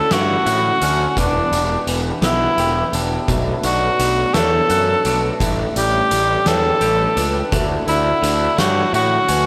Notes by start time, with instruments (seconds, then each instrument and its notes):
Already playing: analog synth pad D3 A3 C#4 E4 F#5, clean electric guitar D3 D4, cor anglais A4
0.11 picked electric bass G2, clean electric guitar A3, cor anglais F#4, snare, closed hi-hat
0.46 picked electric bass A2, clean electric guitar F#4, closed hi-hat
0.82 picked electric bass D2, clean electric guitar C#4, closed hi-hat
1.17 picked electric bass E1, clean electric guitar E3, analog synth pad E3 B3 D4 G4, cor anglais D4, kick, closed hi-hat
1.52 picked electric bass E1, closed hi-hat
1.87 picked electric bass E1, clean electric guitar E3, closed hi-hat
2.22 picked electric bass B1, clean electric guitar B3, cor anglais E4, snare, closed hi-hat
2.58 picked electric bass E1, clean electric guitar G4, closed hi-hat
2.93 picked electric bass E1, clean electric guitar D4, closed hi-hat
3.28 picked electric bass B1, clean electric guitar B2, analog synth pad A3, vibraphone E5, kick, closed hi-hat
3.63 picked electric bass B1, cor anglais F#4, vibraphone D5, closed hi-hat
3.99 picked electric bass B1, clean electric guitar F#3, closed hi-hat
4.34 picked electric bass E2, clean electric guitar A3, cor anglais A4, vibraphone C#5, snare, closed hi-hat
4.70 picked electric bass F#2, clean electric guitar F#4, closed hi-hat
5.05 picked electric bass B1, clean electric guitar D4, vibraphone B4, closed hi-hat
5.40 picked electric bass A1, clean electric guitar A2, analog synth pad G3 A3, vibraphone E5, kick, closed hi-hat
5.76 picked electric bass A1, cor anglais G4, vibraphone D5, closed hi-hat
6.11 picked electric bass A1, clean electric guitar E3, closed hi-hat
6.46 picked electric bass E2, clean electric guitar G3, cor anglais A4, vibraphone C#5, snare, closed hi-hat
6.81 picked electric bass A1, clean electric guitar G4, closed hi-hat
7.17 picked electric bass C#2, clean electric guitar D4, vibraphone B4, closed hi-hat
7.52 picked electric bass D2, clean electric guitar D3, analog synth pad D3 E4 F#5, vibraphone E5, kick, closed hi-hat
7.87 picked electric bass D2, cor anglais E4, vibraphone D5, closed hi-hat
8.22 picked electric bass D2, clean electric guitar D3, closed hi-hat
8.58 picked electric bass G2, clean electric guitar A3, cor anglais F#4, vibraphone C#5, snare, closed hi-hat
8.93 picked electric bass A2, clean electric guitar F#4, cor anglais F#4, closed hi-hat
9.28 picked electric bass D2, clean electric guitar C#4, vibraphone B4, closed hi-hat